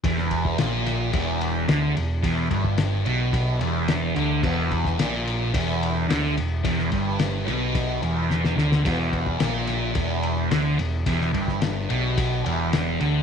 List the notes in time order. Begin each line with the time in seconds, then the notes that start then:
0.04 E1 E2, kick, ride
0.18 snare
0.31 kick, ride
0.45 kick
0.58 A#1 A#2, snare, ride
0.86 snare, ride
1.12 E1 E2, kick, ride
1.41 ride
1.68 D2 D3, snare, ride
1.95 E1 E2, ride
2.22 E1 E2, kick, ride
2.50 G1 G2, kick, ride
2.65 kick
2.78 snare, ride
3.05 B1 B2, ride
3.33 kick, ride
3.59 E1 E2, ride
3.88 snare, ride
4.15 D2 D3, ride
4.42 E1 E2, kick, crash
4.71 kick, ride
4.85 kick, snare
4.98 A#1 A#2, snare, ride
5.27 ride
5.53 E1 E2, kick, ride
5.83 ride
6.07 D2 D3, snare, ride
6.37 E1 E2, ride
6.64 E1 E2, kick, ride
6.79 snare
6.92 G1 G2, kick, ride
7.19 snare, ride
7.46 B1 B2, snare, ride
7.75 kick, ride
8.02 E1 E2, ride
8.30 snare
8.44 snare
8.56 D2 D3, snare
8.72 snare
8.83 E1 E2, kick, ride, crash
9.13 kick, ride
9.27 kick
9.38 A#1 A#2, snare, ride
9.67 snare, ride
9.94 E1 E2, kick, ride
10.23 ride
10.50 D2 D3, snare, ride
10.79 E1 E2, ride
11.06 E1 E2, kick, ride
11.21 snare
11.33 G1 G2, kick, ride
11.48 kick, snare
11.62 snare, ride
11.89 B1 B2, ride
12.18 kick, ride
12.45 E1 E2, ride
12.73 snare, ride
13.00 D2 D3, ride